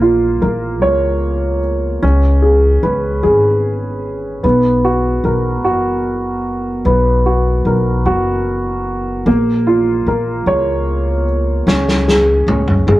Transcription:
0, 0, Header, 1, 4, 480
1, 0, Start_track
1, 0, Tempo, 803213
1, 1211, Time_signature, 6, 3, 24, 8
1, 7768, End_track
2, 0, Start_track
2, 0, Title_t, "Upright piano"
2, 0, Program_c, 0, 0
2, 0, Control_c, 0, 64, 127
2, 0, Note_on_c, 0, 58, 51
2, 9, Note_on_c, 0, 65, 37
2, 249, Note_on_c, 0, 70, 39
2, 489, Note_on_c, 0, 73, 50
2, 946, Note_off_c, 0, 65, 0
2, 1185, Note_off_c, 0, 58, 0
2, 1187, Note_off_c, 0, 70, 0
2, 1189, Note_off_c, 0, 73, 0
2, 1210, Note_on_c, 0, 61, 51
2, 1219, Control_c, 0, 64, 0
2, 1314, Control_c, 0, 64, 127
2, 1447, Note_on_c, 0, 68, 36
2, 1690, Note_on_c, 0, 71, 40
2, 1923, Note_off_c, 0, 68, 0
2, 1932, Note_on_c, 0, 68, 44
2, 2628, Note_off_c, 0, 61, 0
2, 2628, Note_off_c, 0, 71, 0
2, 2631, Note_off_c, 0, 68, 0
2, 2650, Note_on_c, 0, 59, 50
2, 2660, Control_c, 0, 64, 0
2, 2748, Control_c, 0, 64, 127
2, 2895, Note_on_c, 0, 66, 39
2, 3136, Note_on_c, 0, 70, 38
2, 3364, Note_off_c, 0, 66, 0
2, 3373, Note_on_c, 0, 66, 42
2, 4069, Note_off_c, 0, 59, 0
2, 4072, Note_off_c, 0, 70, 0
2, 4097, Note_on_c, 0, 59, 48
2, 4310, Note_off_c, 0, 66, 0
2, 4338, Note_on_c, 0, 66, 38
2, 4581, Note_on_c, 0, 70, 40
2, 4808, Note_off_c, 0, 66, 0
2, 4817, Note_on_c, 0, 66, 49
2, 5512, Note_off_c, 0, 59, 0
2, 5514, Note_off_c, 0, 70, 0
2, 5515, Note_off_c, 0, 66, 0
2, 5537, Note_on_c, 0, 58, 57
2, 5543, Control_c, 0, 64, 0
2, 5663, Control_c, 0, 64, 127
2, 5777, Note_on_c, 0, 65, 45
2, 6022, Note_on_c, 0, 70, 41
2, 6258, Note_on_c, 0, 73, 46
2, 6712, Note_off_c, 0, 65, 0
2, 6952, Note_off_c, 0, 58, 0
2, 6954, Note_off_c, 0, 70, 0
2, 6955, Note_off_c, 0, 73, 0
2, 6978, Note_on_c, 0, 61, 56
2, 6982, Control_c, 0, 64, 0
2, 7081, Control_c, 0, 64, 127
2, 7218, Note_on_c, 0, 68, 43
2, 7452, Note_off_c, 0, 61, 0
2, 7461, Note_on_c, 0, 61, 37
2, 7692, Note_off_c, 0, 68, 0
2, 7701, Note_on_c, 0, 68, 47
2, 7768, Note_off_c, 0, 61, 0
2, 7768, Note_off_c, 0, 68, 0
2, 7768, End_track
3, 0, Start_track
3, 0, Title_t, "Upright bass"
3, 0, Program_c, 1, 32
3, 0, Note_on_c, 1, 34, 85
3, 225, Note_off_c, 1, 34, 0
3, 251, Note_on_c, 1, 34, 70
3, 491, Note_off_c, 1, 34, 0
3, 491, Note_on_c, 1, 37, 61
3, 1187, Note_off_c, 1, 37, 0
3, 1210, Note_on_c, 1, 37, 83
3, 1667, Note_off_c, 1, 37, 0
3, 1690, Note_on_c, 1, 37, 75
3, 1931, Note_on_c, 1, 32, 66
3, 1940, Note_off_c, 1, 37, 0
3, 2628, Note_off_c, 1, 32, 0
3, 2652, Note_on_c, 1, 35, 76
3, 3109, Note_off_c, 1, 35, 0
3, 3130, Note_on_c, 1, 35, 65
3, 3373, Note_off_c, 1, 35, 0
3, 3373, Note_on_c, 1, 30, 69
3, 4070, Note_off_c, 1, 30, 0
3, 4093, Note_on_c, 1, 35, 78
3, 4550, Note_off_c, 1, 35, 0
3, 4572, Note_on_c, 1, 35, 72
3, 4813, Note_on_c, 1, 30, 74
3, 4822, Note_off_c, 1, 35, 0
3, 5510, Note_off_c, 1, 30, 0
3, 5533, Note_on_c, 1, 34, 88
3, 5990, Note_off_c, 1, 34, 0
3, 6014, Note_on_c, 1, 34, 67
3, 6240, Note_off_c, 1, 34, 0
3, 6252, Note_on_c, 1, 37, 66
3, 6949, Note_off_c, 1, 37, 0
3, 6972, Note_on_c, 1, 37, 89
3, 7429, Note_off_c, 1, 37, 0
3, 7450, Note_on_c, 1, 37, 74
3, 7677, Note_off_c, 1, 37, 0
3, 7691, Note_on_c, 1, 32, 73
3, 7768, Note_off_c, 1, 32, 0
3, 7768, End_track
4, 0, Start_track
4, 0, Title_t, "Drums"
4, 6979, Note_on_c, 9, 38, 43
4, 7039, Note_off_c, 9, 38, 0
4, 7102, Note_on_c, 9, 38, 37
4, 7162, Note_off_c, 9, 38, 0
4, 7222, Note_on_c, 9, 38, 53
4, 7282, Note_off_c, 9, 38, 0
4, 7458, Note_on_c, 9, 48, 57
4, 7517, Note_off_c, 9, 48, 0
4, 7575, Note_on_c, 9, 47, 49
4, 7635, Note_off_c, 9, 47, 0
4, 7696, Note_on_c, 9, 47, 64
4, 7756, Note_off_c, 9, 47, 0
4, 7768, End_track
0, 0, End_of_file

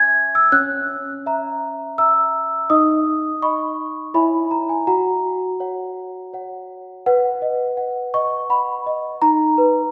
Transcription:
0, 0, Header, 1, 2, 480
1, 0, Start_track
1, 0, Key_signature, 5, "major"
1, 0, Tempo, 723764
1, 350, Time_signature, 3, 2, 24, 8
1, 6576, End_track
2, 0, Start_track
2, 0, Title_t, "Celesta"
2, 0, Program_c, 0, 8
2, 0, Control_c, 0, 64, 127
2, 0, Note_on_c, 0, 61, 74
2, 0, Note_on_c, 0, 73, 68
2, 0, Note_on_c, 0, 76, 49
2, 0, Note_on_c, 0, 80, 58
2, 0, Note_on_c, 0, 85, 105
2, 0, Note_on_c, 0, 92, 98
2, 232, Note_off_c, 0, 92, 0
2, 233, Note_on_c, 0, 88, 88
2, 325, Note_off_c, 0, 76, 0
2, 325, Note_off_c, 0, 80, 0
2, 346, Note_off_c, 0, 73, 0
2, 346, Note_on_c, 0, 73, 59
2, 347, Note_off_c, 0, 61, 0
2, 347, Note_on_c, 0, 61, 71
2, 347, Note_on_c, 0, 90, 104
2, 351, Note_off_c, 0, 88, 0
2, 362, Control_c, 0, 64, 0
2, 368, Note_off_c, 0, 85, 0
2, 477, Control_c, 0, 64, 127
2, 812, Note_off_c, 0, 61, 0
2, 812, Note_off_c, 0, 73, 0
2, 838, Note_on_c, 0, 76, 55
2, 843, Note_on_c, 0, 82, 58
2, 1286, Note_off_c, 0, 76, 0
2, 1288, Note_off_c, 0, 82, 0
2, 1306, Note_off_c, 0, 90, 0
2, 1315, Note_on_c, 0, 76, 47
2, 1315, Note_on_c, 0, 88, 82
2, 1319, Note_on_c, 0, 82, 54
2, 1764, Note_off_c, 0, 76, 0
2, 1766, Note_off_c, 0, 82, 0
2, 1789, Note_on_c, 0, 75, 60
2, 1789, Note_on_c, 0, 87, 87
2, 1790, Note_off_c, 0, 88, 0
2, 1791, Note_on_c, 0, 63, 63
2, 1798, Control_c, 0, 64, 0
2, 1909, Control_c, 0, 64, 127
2, 2253, Note_off_c, 0, 63, 0
2, 2253, Note_off_c, 0, 75, 0
2, 2267, Note_off_c, 0, 87, 0
2, 2271, Note_on_c, 0, 85, 75
2, 2272, Note_on_c, 0, 75, 46
2, 2274, Note_on_c, 0, 83, 53
2, 2722, Note_off_c, 0, 75, 0
2, 2723, Note_off_c, 0, 83, 0
2, 2747, Note_on_c, 0, 64, 53
2, 2748, Note_off_c, 0, 85, 0
2, 2748, Note_on_c, 0, 83, 61
2, 2750, Note_on_c, 0, 73, 36
2, 2750, Note_on_c, 0, 76, 45
2, 2753, Note_on_c, 0, 80, 37
2, 2755, Control_c, 0, 64, 0
2, 2866, Control_c, 0, 64, 127
2, 2988, Note_off_c, 0, 83, 0
2, 2991, Note_on_c, 0, 82, 60
2, 3104, Note_off_c, 0, 80, 0
2, 3109, Note_off_c, 0, 82, 0
2, 3112, Note_on_c, 0, 80, 55
2, 3203, Note_off_c, 0, 73, 0
2, 3214, Note_off_c, 0, 64, 0
2, 3216, Note_off_c, 0, 76, 0
2, 3230, Note_off_c, 0, 80, 0
2, 3231, Note_on_c, 0, 82, 64
2, 3232, Note_on_c, 0, 66, 51
2, 3232, Note_on_c, 0, 78, 46
2, 3239, Control_c, 0, 64, 0
2, 3364, Control_c, 0, 64, 127
2, 3698, Note_off_c, 0, 66, 0
2, 3698, Note_off_c, 0, 78, 0
2, 3715, Note_on_c, 0, 73, 40
2, 3718, Note_on_c, 0, 78, 39
2, 4168, Note_off_c, 0, 73, 0
2, 4170, Note_off_c, 0, 78, 0
2, 4194, Note_off_c, 0, 82, 0
2, 4201, Note_on_c, 0, 73, 37
2, 4206, Note_on_c, 0, 78, 37
2, 4653, Note_off_c, 0, 73, 0
2, 4655, Note_off_c, 0, 78, 0
2, 4685, Control_c, 0, 64, 0
2, 4685, Note_on_c, 0, 71, 58
2, 4685, Note_on_c, 0, 78, 78
2, 4817, Control_c, 0, 64, 127
2, 4921, Note_on_c, 0, 75, 51
2, 5146, Note_off_c, 0, 78, 0
2, 5154, Note_on_c, 0, 78, 46
2, 5301, Note_off_c, 0, 75, 0
2, 5398, Note_on_c, 0, 85, 88
2, 5399, Note_on_c, 0, 75, 54
2, 5538, Note_off_c, 0, 78, 0
2, 5635, Note_off_c, 0, 85, 0
2, 5635, Note_on_c, 0, 78, 46
2, 5638, Note_on_c, 0, 83, 66
2, 5780, Note_off_c, 0, 75, 0
2, 5879, Note_on_c, 0, 75, 48
2, 6017, Note_off_c, 0, 78, 0
2, 6091, Note_off_c, 0, 71, 0
2, 6112, Note_on_c, 0, 82, 93
2, 6114, Note_off_c, 0, 83, 0
2, 6114, Note_on_c, 0, 63, 58
2, 6115, Note_off_c, 0, 75, 0
2, 6124, Control_c, 0, 64, 0
2, 6248, Control_c, 0, 64, 127
2, 6353, Note_on_c, 0, 71, 60
2, 6576, Note_off_c, 0, 63, 0
2, 6576, Note_off_c, 0, 71, 0
2, 6576, Note_off_c, 0, 82, 0
2, 6576, End_track
0, 0, End_of_file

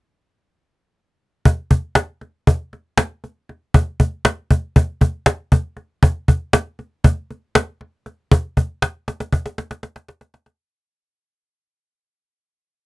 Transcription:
0, 0, Header, 1, 2, 480
1, 0, Start_track
1, 0, Tempo, 506757
1, 1380, Time_signature, 9, 3, 24, 8
1, 12177, End_track
2, 0, Start_track
2, 0, Title_t, "Cajon"
2, 1378, Note_on_c, 9, 36, 92
2, 1473, Note_off_c, 9, 36, 0
2, 1615, Note_on_c, 9, 38, 29
2, 1617, Note_on_c, 9, 36, 65
2, 1710, Note_off_c, 9, 38, 0
2, 1712, Note_off_c, 9, 36, 0
2, 1850, Note_on_c, 9, 38, 92
2, 1944, Note_off_c, 9, 38, 0
2, 2096, Note_on_c, 9, 38, 32
2, 2191, Note_off_c, 9, 38, 0
2, 2342, Note_on_c, 9, 36, 93
2, 2437, Note_off_c, 9, 36, 0
2, 2585, Note_on_c, 9, 38, 31
2, 2680, Note_off_c, 9, 38, 0
2, 2818, Note_on_c, 9, 38, 100
2, 2913, Note_off_c, 9, 38, 0
2, 3067, Note_on_c, 9, 38, 31
2, 3161, Note_off_c, 9, 38, 0
2, 3308, Note_on_c, 9, 38, 31
2, 3403, Note_off_c, 9, 38, 0
2, 3546, Note_on_c, 9, 36, 103
2, 3641, Note_off_c, 9, 36, 0
2, 3787, Note_on_c, 9, 36, 66
2, 3882, Note_off_c, 9, 36, 0
2, 4025, Note_on_c, 9, 38, 95
2, 4119, Note_off_c, 9, 38, 0
2, 4268, Note_on_c, 9, 36, 61
2, 4362, Note_off_c, 9, 36, 0
2, 4508, Note_on_c, 9, 36, 93
2, 4603, Note_off_c, 9, 36, 0
2, 4744, Note_on_c, 9, 38, 30
2, 4748, Note_on_c, 9, 36, 67
2, 4839, Note_off_c, 9, 38, 0
2, 4843, Note_off_c, 9, 36, 0
2, 4983, Note_on_c, 9, 38, 97
2, 5078, Note_off_c, 9, 38, 0
2, 5227, Note_on_c, 9, 36, 67
2, 5322, Note_off_c, 9, 36, 0
2, 5462, Note_on_c, 9, 38, 31
2, 5556, Note_off_c, 9, 38, 0
2, 5708, Note_on_c, 9, 36, 99
2, 5803, Note_off_c, 9, 36, 0
2, 5950, Note_on_c, 9, 38, 32
2, 5951, Note_on_c, 9, 36, 65
2, 6045, Note_off_c, 9, 36, 0
2, 6045, Note_off_c, 9, 38, 0
2, 6187, Note_on_c, 9, 38, 97
2, 6282, Note_off_c, 9, 38, 0
2, 6431, Note_on_c, 9, 38, 32
2, 6526, Note_off_c, 9, 38, 0
2, 6668, Note_on_c, 9, 38, 29
2, 6672, Note_on_c, 9, 36, 91
2, 6763, Note_off_c, 9, 38, 0
2, 6767, Note_off_c, 9, 36, 0
2, 6920, Note_on_c, 9, 38, 31
2, 7014, Note_off_c, 9, 38, 0
2, 7154, Note_on_c, 9, 38, 102
2, 7248, Note_off_c, 9, 38, 0
2, 7396, Note_on_c, 9, 38, 33
2, 7491, Note_off_c, 9, 38, 0
2, 7635, Note_on_c, 9, 38, 30
2, 7729, Note_off_c, 9, 38, 0
2, 7876, Note_on_c, 9, 36, 107
2, 7971, Note_off_c, 9, 36, 0
2, 8117, Note_on_c, 9, 36, 65
2, 8212, Note_off_c, 9, 36, 0
2, 8357, Note_on_c, 9, 38, 92
2, 8452, Note_off_c, 9, 38, 0
2, 8600, Note_on_c, 9, 38, 54
2, 8694, Note_off_c, 9, 38, 0
2, 8717, Note_on_c, 9, 38, 46
2, 8812, Note_off_c, 9, 38, 0
2, 8833, Note_on_c, 9, 36, 94
2, 8833, Note_on_c, 9, 38, 61
2, 8927, Note_off_c, 9, 38, 0
2, 8928, Note_off_c, 9, 36, 0
2, 8957, Note_on_c, 9, 38, 58
2, 9052, Note_off_c, 9, 38, 0
2, 9076, Note_on_c, 9, 38, 70
2, 9171, Note_off_c, 9, 38, 0
2, 9196, Note_on_c, 9, 38, 58
2, 9290, Note_off_c, 9, 38, 0
2, 9311, Note_on_c, 9, 38, 71
2, 9406, Note_off_c, 9, 38, 0
2, 9433, Note_on_c, 9, 38, 67
2, 9527, Note_off_c, 9, 38, 0
2, 9552, Note_on_c, 9, 38, 80
2, 9647, Note_off_c, 9, 38, 0
2, 9671, Note_on_c, 9, 38, 66
2, 9766, Note_off_c, 9, 38, 0
2, 9793, Note_on_c, 9, 38, 80
2, 9888, Note_off_c, 9, 38, 0
2, 9909, Note_on_c, 9, 38, 75
2, 10004, Note_off_c, 9, 38, 0
2, 12177, End_track
0, 0, End_of_file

